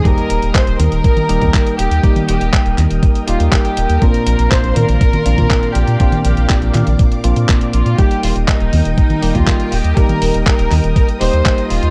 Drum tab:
HH |xxxxxxxxxxxxxxxx|xxxxxxxxxxxxxxxx|xxxxxxxxxxxxxxxx|xxxxxxxxxxxxxxxx|
CP |----x-------x---|----x-x-----x---|----x-------x---|----x-x-----x---|
CG |------o--o-o----|-o----o---------|------o--o-o----|-o----o---------|
BD |o---o---o--oo---|o---o---o---o---|o---o---o--oo---|o---o---o---o---|

HH |xxoxxxoxxxoxxxox|xxoxxxoxxxoxxxox|
CP |----x-------x---|----x-x-----x---|
CG |------o--o-o----|-o----o---------|
BD |o---o---o--oo---|o---o---o---o---|